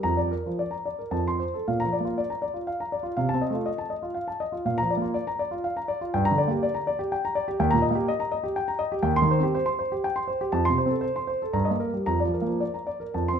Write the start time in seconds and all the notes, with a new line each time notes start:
0.03 F2 A#5
0.17 D5
0.31 A#4
0.46 F3
0.59 D5
0.71 A#5
0.86 D5
0.99 A#4
1.11 F2 A5
1.28 C6
1.39 C5
1.54 A4
1.68 A#2 F5
1.80 A#5
1.84 F3
1.93 D5
2.00 A#3
2.05 F4
2.18 D5
2.30 A#5
2.42 D5
2.54 F4
2.67 F5
2.80 A#5
2.92 D5
3.03 F4
3.17 C3 F5
3.29 A5
3.34 C4
3.42 D#5
3.50 A3 F4
3.66 D#5
3.78 A5
3.90 D#5
4.02 F4
4.14 F5
4.28 A5
4.40 D#5
4.52 F4
4.65 A#2 F5
4.78 A#5
4.82 F3
4.90 D5
4.97 A#3
5.02 F4
5.14 D5
5.27 A#5
5.39 D5
5.51 F4
5.64 F5
5.77 A#5
5.88 D5
6.01 F4
6.14 G2 G5
6.25 A#5
6.31 D3
6.38 D5
6.48 A#3 G4
6.63 D5
6.74 A#5
6.87 D5
6.99 G4
7.12 G5
7.25 A#5
7.35 D5
7.48 G4
7.59 D#2 G5
7.71 A#2 A#5
7.82 D#5
7.90 A#3
7.95 G4
8.08 D#5
8.20 A#5
8.32 D#5
8.44 G4
8.56 G5
8.68 A#5
8.79 D#5
8.92 G4
9.02 D#2 G5
9.16 C6
9.22 D#3
9.31 C5
9.39 C4 G4
9.55 C5
9.66 C6
9.79 C5
9.92 G4
10.04 G5
10.16 C6
10.28 C5
10.41 G4
10.52 F2 A5
10.65 C6
10.70 C3
10.78 C5
10.86 C4 A4
11.01 C5
11.16 C6
11.27 C5
11.42 A4
11.53 G2 A#5
11.65 D#5
11.70 A#3
11.80 A#4
11.93 G3
12.06 F2 A#5
12.20 D5
12.25 F3
12.33 A#4
12.42 A#3
12.47 F3
12.60 D5
12.74 A#5
12.87 D5
13.00 A#4
13.14 F2 A5
13.28 C6
13.33 C4